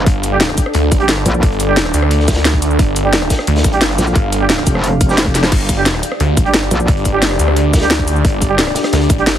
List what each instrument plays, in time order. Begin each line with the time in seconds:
Already playing: ambient pad D4 A4
0.06 detuned saw bass G1, ambient pad D5, kick, closed hi-hat
0.23 closed hi-hat, shaker
0.32 brass ensemble G3 D4 G4
0.40 snare, closed hi-hat
0.49 cross-stick, closed hi-hat
0.57 kick, closed hi-hat, shaker
0.66 cross-stick
0.73 detuned saw bass D2, closed hi-hat
0.92 detuned saw bass A1, kick, closed hi-hat, shaker
1.00 brass ensemble G3 D4 G4, closed hi-hat
1.09 detuned saw bass G1, snare, closed hi-hat
1.17 cross-stick
1.26 wobble bass A#1, closed hi-hat, shaker
1.34 shaker
1.43 detuned saw bass G1, kick, closed hi-hat
1.52 closed hi-hat
1.60 closed hi-hat, shaker
1.68 brass ensemble G3 D4 G4
1.77 snare, closed hi-hat
1.85 cross-stick, snare
1.94 detuned saw bass D2, closed hi-hat, shaker
2.02 cross-stick
2.11 closed hi-hat
2.20 snare
2.28 kick, snare, closed hi-hat, shaker
2.32 snare, closed hi-hat
2.36 snare, closed hi-hat
2.45 snare, closed hi-hat
2.54 kick
2.62 closed hi-hat, shaker
2.71 shaker
2.79 detuned saw bass G1, ambient pad F5, kick, closed hi-hat
2.96 closed hi-hat, shaker
3.05 brass ensemble G3 D4 G4
3.13 snare, closed hi-hat
3.22 cross-stick, closed hi-hat
3.30 kick, snare, closed hi-hat, shaker
3.39 cross-stick, snare
3.47 detuned saw bass D2, closed hi-hat
3.56 snare, closed hi-hat
3.64 detuned saw bass A1, kick, snare, closed hi-hat, shaker
3.73 brass ensemble G3 D4 G4, closed hi-hat
3.81 detuned saw bass G1, snare, closed hi-hat
3.90 cross-stick, snare
3.98 wobble bass A#1, snare, closed hi-hat, shaker
4.07 closed hi-hat, shaker
4.15 detuned saw bass G1, kick, closed hi-hat
4.33 closed hi-hat, shaker
4.41 brass ensemble G3 D4 G4
4.49 snare, closed hi-hat
4.58 cross-stick, snare
4.66 wobble bass F1, kick, closed hi-hat, shaker
4.75 cross-stick
4.83 closed hi-hat
5.01 kick, closed hi-hat, shaker
5.09 brass ensemble G3 D4 G4, snare, shaker
5.17 snare, closed hi-hat
5.26 kick, closed hi-hat
5.35 snare, closed hi-hat, shaker
5.43 snare, shaker
5.52 detuned saw bass G1, ambient pad D4 G4 D5, kick, closed hi-hat, crash
5.69 kick, closed hi-hat, shaker
5.77 brass ensemble G3 D4 G4
5.86 snare, closed hi-hat
5.95 cross-stick, closed hi-hat
6.03 closed hi-hat, shaker
6.12 cross-stick
6.20 detuned saw bass D2, closed hi-hat
6.37 detuned saw bass A1, kick, closed hi-hat, shaker
6.46 brass ensemble G3 D4 G4, closed hi-hat
6.53 detuned saw bass G1, snare, closed hi-hat
6.63 cross-stick
6.71 wobble bass A#1, closed hi-hat, shaker
6.80 shaker
6.88 detuned saw bass G1, kick, closed hi-hat
6.97 closed hi-hat
7.05 kick, closed hi-hat, shaker
7.14 brass ensemble G3 D4 G4
7.22 snare, closed hi-hat
7.31 cross-stick, snare
7.39 detuned saw bass D2, closed hi-hat, shaker
7.48 cross-stick
7.56 closed hi-hat
7.73 kick, snare, closed hi-hat, shaker
7.78 snare, closed hi-hat
7.81 brass ensemble G3 D4 G4, snare, closed hi-hat
7.91 snare, closed hi-hat
7.99 kick
8.08 closed hi-hat, shaker
8.16 shaker
8.25 detuned saw bass G1, kick, closed hi-hat
8.41 kick, closed hi-hat, shaker
8.50 brass ensemble G3 D4 G4
8.58 snare, closed hi-hat
8.67 cross-stick, closed hi-hat
8.75 snare, closed hi-hat, shaker
8.83 cross-stick, snare, closed hi-hat
8.93 detuned saw bass D2, snare, closed hi-hat
9.01 closed hi-hat
9.09 detuned saw bass A1, kick, closed hi-hat, shaker
9.18 brass ensemble G3 D4 G4, closed hi-hat
9.27 detuned saw bass G1, snare, closed hi-hat
9.35 cross-stick